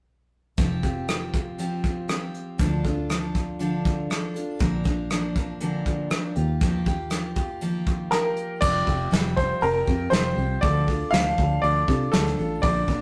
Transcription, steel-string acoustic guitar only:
0.58 F3 C4 F4 G4
0.83 C4 F4 G4
1.09 F3 C4 F4 G4
1.58 F3 C4 F4 G4
2.08 F3 C4 F4 G4
2.58 D3 F3 D4 F4 A4
2.84 D4 F4 A4
3.10 F3 D4 F4 A4
3.59 D3 F3 D4 F4 A4
4.10 F3 D4 F4 A4
4.34 D4 F4 A4
4.59 A#2 D3 F3 A#3 D4 A#4
4.84 F3 A#3 D4 A#4
5.10 F3 A#3 D4 A#4
5.36 F3 A#3 D4 A#4
5.60 A#2 D3 F3 A#3 D4 A#4
6.10 F3 A#3 D4 A#4
6.35 A#3 F4 G4
6.61 D#3 F3 A#3 F4 G4
6.86 A#3 F4 G4
7.10 F3 A#3 F4 G4
7.36 A#3 F4 G4
7.61 D#3 F3 A#3 F4 G4
8.11 F3 A#3 F4 G4
8.61 F3 G3 C4 F4 G4
8.86 C4 F4 G4
9.11 F3 G3 C4 F4 G4
9.61 G3 C4 F4 G4
9.86 C4 F4 G4
10.11 F3 G3 C4 F4 G4
10.36 C4 F4 G4
10.62 D3 F3 D4 F4 A4
10.87 D4 F4 A4
11.12 D3 F3 D4 F4 A4
11.64 F3 D4 F4 A4
11.88 D4 F4 A4
12.12 D3 F3 D4 F4 A4
12.39 D4 F4 A4
12.62 A#2 D3 F3 A#3 D4 A#4
12.88 F3 A#3 D4 A#4

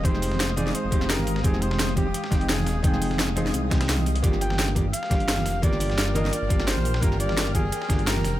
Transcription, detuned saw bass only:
0.05 F1
0.84 F1
0.92 F1
1.19 G#1
1.44 F1
2.32 F1
2.66 D#1
2.84 F1
3.54 C2
3.89 C2
4.24 G1
5.11 G1
5.46 F1
5.63 G1
6.42 G1
6.50 G1
6.77 A#1
7.03 G1
7.90 G1
8.25 F1

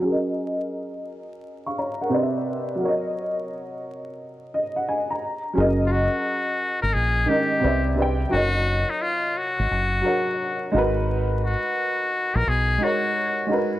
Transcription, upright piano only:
0.00 F#3 C#4
0.05 G#4 A#4
0.12 D#5
1.66 F5 C#6
1.78 C#5 A#5
2.01 A#4 F#5
2.09 C3 C4 B4
2.14 D5 D#5
2.22 E5
2.76 F#3 F#4
2.82 A#4 C#5
2.88 D#5
4.54 D#5
4.76 F#5
4.89 G#5
5.10 A#5
5.53 F#3 C#4 G#4
5.58 A#4 D#5
7.26 D#3 G#3 C#4
7.30 A#4 D#5
7.60 C3 C4 B4
7.65 D5 E5
7.95 C3 C4 B4
8.00 D5 G5
8.29 F#3 D#4 A#4
8.34 C#5 D#5
10.01 F#3 F#4 A#4
10.06 C#5 F#5
10.72 G#3 D#4 F#4
10.76 A#4 B4
12.78 G#3 D#4 F#4
12.83 A#4 C#5
13.47 G#3 D#4 F#4
13.51 A#4 B4

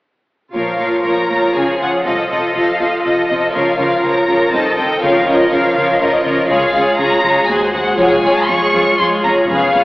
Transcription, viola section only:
0.54 F3 F4
0.79 F3 F4
1.04 F3 F4
1.29 F3 F4
1.54 F3 F4
1.79 F3 F4
2.05 F3 F4
2.30 F3 F4
2.55 F3 F4
2.79 F3 F4
3.03 F3 F4
3.28 F3 F4
3.53 F3 F4
3.78 F3 F4
4.01 F3 F4
4.27 F3 F4
4.52 D#3 C4
4.76 D#3 C4
5.02 F3 F4
5.27 F3 F4
5.51 F3 F4
5.77 F3 F4
6.01 F3 F4
6.24 F3 F4
6.49 G#3 F4
6.73 G#3 F4
6.98 G#3 F4
7.23 G#3 F4
7.48 G#3 F#4
7.73 G#3 F#4
7.97 G#3 F4
8.23 G#3 F4
8.49 G#3 F4
8.73 G#3 F4
8.98 G#3 F4
9.24 G#3 F4
9.48 B3 C#4
9.74 B3 C#4

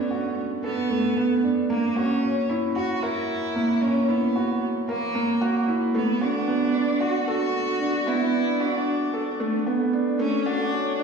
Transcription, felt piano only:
Already playing: A3 B3 D4 F#4 A4
0.11 F#4
0.64 A4
0.90 A3
1.17 B3
1.43 D4
1.70 A#3
1.96 F#4
2.23 C#4
2.49 E4
2.76 F#4
3.03 A#4
3.55 A#3
3.82 C#4
4.09 E4
4.36 F#4
4.89 A#4
5.15 A#3
5.41 F#4
5.68 E4
5.95 A3
6.21 F#4
6.48 B3
6.74 D4
7.01 F#4
7.27 A4
7.81 D4
8.07 B3
8.33 D4
8.60 F#4
9.14 A4
9.40 A3
9.66 B3
9.93 D4
10.19 A3
10.46 F#4
10.73 C#4
10.99 D4

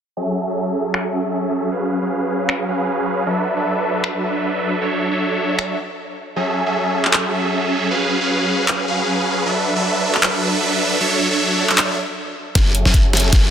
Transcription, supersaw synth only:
0.17 F#3 C#4 G#4 A4 E5
0.47 F#3 C#4 G#4 A4 E5
1.72 F#3 C#4 G#4 B4 F5
2.02 F#3 C#4 G#4 B4 F5
2.68 F#3 C#4 G#4 B4 F5
3.26 F#3 D4 A4 B4 E5
3.57 F#3 D4 A4 B4 E5
4.81 F#3 D4 A4 C#5 E5
5.11 F#3 D4 A4 C#5 E5
6.36 F#3 C#4 G#4 A4 E5
6.66 F#3 C#4 G#4 A4 E5
7.91 F#3 C#4 G#4 B4 F5
8.21 F#3 C#4 G#4 B4 F5
8.88 F#3 C#4 G#4 B4 F5
9.46 F#3 D4 A4 B4 E5
9.76 F#3 D4 A4 B4 E5
11.01 F#3 D4 A4 C#5 E5
11.31 F#3 D4 A4 C#5 E5
12.55 F#3 C#4 G#4 A4 E5
12.86 F#3 C#4 G#4 A4 E5

